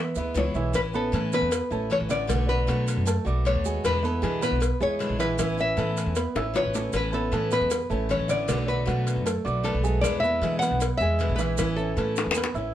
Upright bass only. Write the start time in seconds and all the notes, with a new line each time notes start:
Already playing: E3
0.16 D2
0.35 C#2
0.55 B1
0.74 A1
1.13 A2
1.41 E2
1.71 A1
2.00 A1
2.29 B1
2.68 B2
2.97 F#2
3.26 B1
3.55 D#2
3.84 E2
4.23 E3
4.51 B1
4.80 E2
5.09 A#1
5.38 A1
5.77 A2
6.06 E2
6.35 A1
6.64 A1
6.93 A1
7.32 A2
7.61 E2
7.90 A1
8.19 A1
8.48 B1
8.88 B2
9.16 F#2
9.45 B1
9.74 B1
10.03 E2
10.42 E3
10.71 B1
11.00 E2
11.29 A#1
11.58 A1
11.97 A2
12.26 E2
12.54 A1